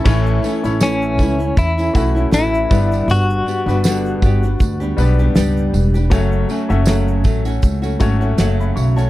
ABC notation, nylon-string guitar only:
X:1
M:4/4
L:1/16
Q:"Swing 16ths" 1/4=79
K:A
V:1 name="Nylon-string guitar"
[A,,E,A,CE]2 [E,A,CE] [A,CE] [A,,E,A,CE]2 [E,A,CE] [A,CE]2 [A,CE] [E,A,CE] [A,CE] [A,,E,A,CE]2 [=G,,D,=G,B,D]2- | [=G,,D,=G,B,D]2 [G,B,D=G] [G,B,DG] [G,,D,G,B,D]2 [G,B,DG] [G,B,D]2 [G,B,DG] [G,B,DG] [G,B,DG] [G,,G,B,DG]3 [G,B,DG] | [F,,C,F,A,CF]2 [F,A,CF] [F,A,CF] [F,,C,F,A,CF]2 [F,A,CF] [F,A,CF]2 [F,A,CF] [F,A,CF] [F,A,CF] [F,,C,F,A,CF]3 [F,A,CF] |]